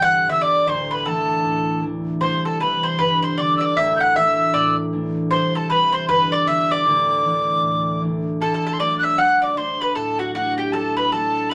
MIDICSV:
0, 0, Header, 1, 4, 480
1, 0, Start_track
1, 0, Tempo, 387097
1, 832, Time_signature, 4, 2, 24, 8
1, 14311, End_track
2, 0, Start_track
2, 0, Title_t, "Tin whistle"
2, 0, Program_c, 0, 75
2, 58, Note_on_c, 0, 90, 102
2, 372, Note_off_c, 0, 90, 0
2, 394, Note_on_c, 0, 88, 102
2, 528, Note_on_c, 0, 86, 92
2, 547, Note_off_c, 0, 88, 0
2, 865, Note_on_c, 0, 84, 89
2, 883, Note_off_c, 0, 86, 0
2, 1169, Note_on_c, 0, 83, 79
2, 1188, Note_off_c, 0, 84, 0
2, 1345, Note_on_c, 0, 81, 87
2, 1364, Note_off_c, 0, 83, 0
2, 2286, Note_off_c, 0, 81, 0
2, 2762, Note_on_c, 0, 84, 89
2, 3028, Note_off_c, 0, 84, 0
2, 3057, Note_on_c, 0, 81, 80
2, 3262, Note_on_c, 0, 83, 92
2, 3281, Note_off_c, 0, 81, 0
2, 3572, Note_on_c, 0, 84, 90
2, 3590, Note_off_c, 0, 83, 0
2, 3745, Note_on_c, 0, 83, 102
2, 3763, Note_off_c, 0, 84, 0
2, 4025, Note_on_c, 0, 84, 88
2, 4044, Note_off_c, 0, 83, 0
2, 4224, Note_on_c, 0, 86, 96
2, 4243, Note_off_c, 0, 84, 0
2, 4422, Note_off_c, 0, 86, 0
2, 4429, Note_on_c, 0, 88, 66
2, 4530, Note_on_c, 0, 86, 93
2, 4549, Note_off_c, 0, 88, 0
2, 4708, Note_on_c, 0, 88, 98
2, 4727, Note_off_c, 0, 86, 0
2, 4907, Note_off_c, 0, 88, 0
2, 4912, Note_on_c, 0, 91, 74
2, 5000, Note_on_c, 0, 90, 101
2, 5019, Note_off_c, 0, 91, 0
2, 5167, Note_off_c, 0, 90, 0
2, 5190, Note_on_c, 0, 88, 104
2, 5891, Note_off_c, 0, 88, 0
2, 6598, Note_on_c, 0, 84, 93
2, 6901, Note_on_c, 0, 81, 84
2, 6920, Note_off_c, 0, 84, 0
2, 7091, Note_on_c, 0, 83, 100
2, 7110, Note_off_c, 0, 81, 0
2, 7374, Note_on_c, 0, 84, 89
2, 7393, Note_off_c, 0, 83, 0
2, 7546, Note_off_c, 0, 84, 0
2, 7553, Note_on_c, 0, 83, 102
2, 7857, Note_on_c, 0, 86, 102
2, 7876, Note_off_c, 0, 83, 0
2, 8037, Note_on_c, 0, 88, 113
2, 8055, Note_off_c, 0, 86, 0
2, 8325, Note_on_c, 0, 86, 98
2, 8343, Note_off_c, 0, 88, 0
2, 9950, Note_off_c, 0, 86, 0
2, 10431, Note_on_c, 0, 81, 89
2, 10829, Note_on_c, 0, 84, 76
2, 10847, Note_off_c, 0, 81, 0
2, 10914, Note_on_c, 0, 86, 102
2, 10933, Note_off_c, 0, 84, 0
2, 11132, Note_off_c, 0, 86, 0
2, 11148, Note_on_c, 0, 90, 75
2, 11218, Note_on_c, 0, 88, 98
2, 11236, Note_off_c, 0, 90, 0
2, 11410, Note_on_c, 0, 90, 117
2, 11428, Note_off_c, 0, 88, 0
2, 11681, Note_off_c, 0, 90, 0
2, 11688, Note_on_c, 0, 86, 92
2, 11876, Note_on_c, 0, 84, 99
2, 11895, Note_off_c, 0, 86, 0
2, 12161, Note_on_c, 0, 83, 89
2, 12180, Note_off_c, 0, 84, 0
2, 12344, Note_on_c, 0, 81, 91
2, 12362, Note_off_c, 0, 83, 0
2, 12636, Note_on_c, 0, 78, 84
2, 12655, Note_off_c, 0, 81, 0
2, 12821, Note_off_c, 0, 78, 0
2, 12829, Note_on_c, 0, 78, 99
2, 13104, Note_off_c, 0, 78, 0
2, 13121, Note_on_c, 0, 79, 88
2, 13296, Note_on_c, 0, 81, 104
2, 13314, Note_off_c, 0, 79, 0
2, 13603, Note_on_c, 0, 83, 88
2, 13622, Note_off_c, 0, 81, 0
2, 13791, Note_on_c, 0, 81, 95
2, 13809, Note_off_c, 0, 83, 0
2, 14256, Note_on_c, 0, 83, 102
2, 14274, Note_off_c, 0, 81, 0
2, 14311, Note_off_c, 0, 83, 0
2, 14311, End_track
3, 0, Start_track
3, 0, Title_t, "Mandolin"
3, 0, Program_c, 1, 25
3, 28, Note_on_c, 1, 78, 94
3, 334, Note_off_c, 1, 78, 0
3, 364, Note_on_c, 1, 76, 78
3, 509, Note_off_c, 1, 76, 0
3, 512, Note_on_c, 1, 74, 81
3, 831, Note_off_c, 1, 74, 0
3, 836, Note_on_c, 1, 72, 78
3, 1121, Note_off_c, 1, 72, 0
3, 1126, Note_on_c, 1, 71, 69
3, 1304, Note_off_c, 1, 71, 0
3, 1309, Note_on_c, 1, 69, 64
3, 2219, Note_off_c, 1, 69, 0
3, 2738, Note_on_c, 1, 72, 69
3, 3015, Note_off_c, 1, 72, 0
3, 3041, Note_on_c, 1, 69, 63
3, 3224, Note_off_c, 1, 69, 0
3, 3229, Note_on_c, 1, 71, 74
3, 3507, Note_off_c, 1, 71, 0
3, 3512, Note_on_c, 1, 72, 67
3, 3697, Note_off_c, 1, 72, 0
3, 3702, Note_on_c, 1, 71, 75
3, 3976, Note_off_c, 1, 71, 0
3, 3998, Note_on_c, 1, 72, 71
3, 4173, Note_off_c, 1, 72, 0
3, 4186, Note_on_c, 1, 74, 77
3, 4459, Note_off_c, 1, 74, 0
3, 4471, Note_on_c, 1, 74, 73
3, 4649, Note_off_c, 1, 74, 0
3, 4671, Note_on_c, 1, 76, 84
3, 4941, Note_off_c, 1, 76, 0
3, 4964, Note_on_c, 1, 78, 80
3, 5136, Note_off_c, 1, 78, 0
3, 5156, Note_on_c, 1, 76, 84
3, 5597, Note_off_c, 1, 76, 0
3, 5625, Note_on_c, 1, 74, 85
3, 5898, Note_off_c, 1, 74, 0
3, 6580, Note_on_c, 1, 72, 77
3, 6855, Note_off_c, 1, 72, 0
3, 6884, Note_on_c, 1, 69, 73
3, 7055, Note_off_c, 1, 69, 0
3, 7065, Note_on_c, 1, 71, 79
3, 7337, Note_off_c, 1, 71, 0
3, 7346, Note_on_c, 1, 72, 68
3, 7525, Note_off_c, 1, 72, 0
3, 7547, Note_on_c, 1, 71, 89
3, 7819, Note_off_c, 1, 71, 0
3, 7836, Note_on_c, 1, 74, 82
3, 8011, Note_off_c, 1, 74, 0
3, 8028, Note_on_c, 1, 76, 87
3, 8325, Note_on_c, 1, 74, 81
3, 8328, Note_off_c, 1, 76, 0
3, 9901, Note_off_c, 1, 74, 0
3, 10436, Note_on_c, 1, 69, 81
3, 10577, Note_off_c, 1, 69, 0
3, 10591, Note_on_c, 1, 69, 69
3, 10729, Note_off_c, 1, 69, 0
3, 10744, Note_on_c, 1, 69, 78
3, 10895, Note_off_c, 1, 69, 0
3, 10910, Note_on_c, 1, 74, 81
3, 11182, Note_off_c, 1, 74, 0
3, 11199, Note_on_c, 1, 76, 70
3, 11375, Note_off_c, 1, 76, 0
3, 11386, Note_on_c, 1, 78, 87
3, 11661, Note_off_c, 1, 78, 0
3, 11677, Note_on_c, 1, 74, 72
3, 11864, Note_off_c, 1, 74, 0
3, 11869, Note_on_c, 1, 72, 72
3, 12143, Note_off_c, 1, 72, 0
3, 12168, Note_on_c, 1, 71, 75
3, 12338, Note_off_c, 1, 71, 0
3, 12343, Note_on_c, 1, 69, 77
3, 12620, Note_off_c, 1, 69, 0
3, 12638, Note_on_c, 1, 66, 64
3, 12818, Note_off_c, 1, 66, 0
3, 12833, Note_on_c, 1, 66, 77
3, 13111, Note_off_c, 1, 66, 0
3, 13116, Note_on_c, 1, 67, 68
3, 13296, Note_off_c, 1, 67, 0
3, 13310, Note_on_c, 1, 69, 82
3, 13586, Note_off_c, 1, 69, 0
3, 13598, Note_on_c, 1, 71, 74
3, 13785, Note_off_c, 1, 71, 0
3, 13790, Note_on_c, 1, 69, 74
3, 14242, Note_off_c, 1, 69, 0
3, 14311, End_track
4, 0, Start_track
4, 0, Title_t, "Harp"
4, 0, Program_c, 2, 46
4, 0, Note_on_c, 2, 31, 65
4, 0, Note_on_c, 2, 43, 72
4, 0, Note_on_c, 2, 57, 46
4, 0, Note_on_c, 2, 60, 63
4, 0, Note_on_c, 2, 62, 59
4, 338, Note_on_c, 2, 50, 52
4, 348, Note_on_c, 2, 59, 55
4, 349, Note_on_c, 2, 55, 44
4, 423, Note_off_c, 2, 60, 0
4, 821, Note_on_c, 2, 26, 64
4, 831, Note_on_c, 2, 38, 69
4, 894, Note_off_c, 2, 31, 0
4, 894, Note_off_c, 2, 43, 0
4, 894, Note_off_c, 2, 50, 0
4, 894, Note_off_c, 2, 55, 0
4, 1312, Note_off_c, 2, 57, 0
4, 1312, Note_on_c, 2, 52, 54
4, 1317, Note_on_c, 2, 57, 51
4, 1319, Note_off_c, 2, 62, 0
4, 1324, Note_on_c, 2, 62, 63
4, 1788, Note_on_c, 2, 45, 63
4, 2239, Note_off_c, 2, 52, 0
4, 2251, Note_on_c, 2, 52, 49
4, 2253, Note_off_c, 2, 57, 0
4, 2255, Note_off_c, 2, 62, 0
4, 2258, Note_on_c, 2, 57, 46
4, 2260, Note_on_c, 2, 62, 55
4, 2733, Note_on_c, 2, 36, 69
4, 2808, Note_off_c, 2, 59, 0
4, 2811, Note_off_c, 2, 26, 0
4, 2811, Note_off_c, 2, 38, 0
4, 2811, Note_off_c, 2, 45, 0
4, 2811, Note_off_c, 2, 52, 0
4, 3220, Note_on_c, 2, 52, 57
4, 3226, Note_on_c, 2, 55, 52
4, 3230, Note_on_c, 2, 60, 61
4, 3699, Note_on_c, 2, 31, 63
4, 3706, Note_on_c, 2, 43, 67
4, 3769, Note_off_c, 2, 36, 0
4, 3769, Note_off_c, 2, 52, 0
4, 3769, Note_off_c, 2, 55, 0
4, 4188, Note_on_c, 2, 50, 52
4, 4194, Note_on_c, 2, 55, 45
4, 4201, Note_on_c, 2, 59, 54
4, 4275, Note_off_c, 2, 60, 0
4, 4653, Note_on_c, 2, 26, 61
4, 4663, Note_on_c, 2, 38, 67
4, 4728, Note_off_c, 2, 31, 0
4, 4728, Note_off_c, 2, 43, 0
4, 4728, Note_off_c, 2, 50, 0
4, 4728, Note_off_c, 2, 55, 0
4, 5144, Note_on_c, 2, 52, 55
4, 5145, Note_off_c, 2, 57, 0
4, 5150, Note_on_c, 2, 57, 51
4, 5153, Note_off_c, 2, 62, 0
4, 5158, Note_on_c, 2, 62, 64
4, 5627, Note_on_c, 2, 45, 69
4, 6095, Note_off_c, 2, 52, 0
4, 6106, Note_off_c, 2, 57, 0
4, 6107, Note_on_c, 2, 52, 52
4, 6109, Note_off_c, 2, 62, 0
4, 6111, Note_on_c, 2, 57, 49
4, 6114, Note_on_c, 2, 62, 57
4, 6578, Note_on_c, 2, 36, 66
4, 6647, Note_off_c, 2, 26, 0
4, 6647, Note_off_c, 2, 38, 0
4, 6647, Note_off_c, 2, 45, 0
4, 6647, Note_off_c, 2, 52, 0
4, 6652, Note_off_c, 2, 59, 0
4, 7053, Note_on_c, 2, 52, 58
4, 7059, Note_on_c, 2, 55, 50
4, 7065, Note_on_c, 2, 60, 61
4, 7527, Note_on_c, 2, 31, 68
4, 7533, Note_on_c, 2, 43, 68
4, 7607, Note_off_c, 2, 36, 0
4, 7607, Note_off_c, 2, 52, 0
4, 7607, Note_off_c, 2, 55, 0
4, 8005, Note_on_c, 2, 50, 46
4, 8009, Note_on_c, 2, 55, 44
4, 8015, Note_on_c, 2, 59, 51
4, 8090, Note_off_c, 2, 60, 0
4, 8499, Note_on_c, 2, 26, 57
4, 8503, Note_on_c, 2, 38, 70
4, 8567, Note_off_c, 2, 31, 0
4, 8567, Note_off_c, 2, 43, 0
4, 8567, Note_off_c, 2, 50, 0
4, 8567, Note_off_c, 2, 55, 0
4, 8975, Note_off_c, 2, 57, 0
4, 8976, Note_on_c, 2, 52, 57
4, 8980, Note_on_c, 2, 57, 49
4, 8984, Note_off_c, 2, 62, 0
4, 8988, Note_on_c, 2, 62, 58
4, 9449, Note_on_c, 2, 45, 60
4, 9918, Note_off_c, 2, 52, 0
4, 9933, Note_on_c, 2, 52, 51
4, 9936, Note_off_c, 2, 57, 0
4, 9940, Note_off_c, 2, 62, 0
4, 9941, Note_on_c, 2, 57, 47
4, 9945, Note_on_c, 2, 62, 54
4, 10405, Note_off_c, 2, 38, 0
4, 10419, Note_on_c, 2, 38, 65
4, 10490, Note_off_c, 2, 26, 0
4, 10490, Note_off_c, 2, 45, 0
4, 10490, Note_off_c, 2, 52, 0
4, 10889, Note_off_c, 2, 57, 0
4, 10889, Note_on_c, 2, 54, 53
4, 10894, Note_on_c, 2, 57, 46
4, 10897, Note_off_c, 2, 62, 0
4, 10902, Note_on_c, 2, 62, 59
4, 11357, Note_off_c, 2, 54, 0
4, 11367, Note_on_c, 2, 54, 49
4, 11371, Note_off_c, 2, 57, 0
4, 11376, Note_on_c, 2, 57, 40
4, 11377, Note_off_c, 2, 62, 0
4, 11382, Note_on_c, 2, 62, 54
4, 11825, Note_off_c, 2, 54, 0
4, 11837, Note_on_c, 2, 54, 49
4, 11839, Note_off_c, 2, 62, 0
4, 11842, Note_off_c, 2, 57, 0
4, 11843, Note_on_c, 2, 62, 54
4, 11847, Note_on_c, 2, 57, 43
4, 11867, Note_off_c, 2, 59, 0
4, 12345, Note_on_c, 2, 45, 63
4, 12813, Note_off_c, 2, 54, 0
4, 12828, Note_on_c, 2, 54, 51
4, 12830, Note_off_c, 2, 57, 0
4, 12835, Note_off_c, 2, 62, 0
4, 12835, Note_on_c, 2, 57, 49
4, 12840, Note_on_c, 2, 62, 62
4, 13289, Note_off_c, 2, 54, 0
4, 13300, Note_on_c, 2, 54, 46
4, 13308, Note_off_c, 2, 57, 0
4, 13311, Note_off_c, 2, 62, 0
4, 13313, Note_on_c, 2, 57, 45
4, 13316, Note_on_c, 2, 62, 52
4, 13786, Note_off_c, 2, 54, 0
4, 13801, Note_off_c, 2, 57, 0
4, 13801, Note_on_c, 2, 54, 51
4, 13806, Note_on_c, 2, 57, 45
4, 13808, Note_off_c, 2, 62, 0
4, 13813, Note_on_c, 2, 62, 53
4, 14262, Note_off_c, 2, 45, 0
4, 14311, Note_off_c, 2, 38, 0
4, 14311, Note_off_c, 2, 54, 0
4, 14311, Note_off_c, 2, 57, 0
4, 14311, Note_off_c, 2, 62, 0
4, 14311, End_track
0, 0, End_of_file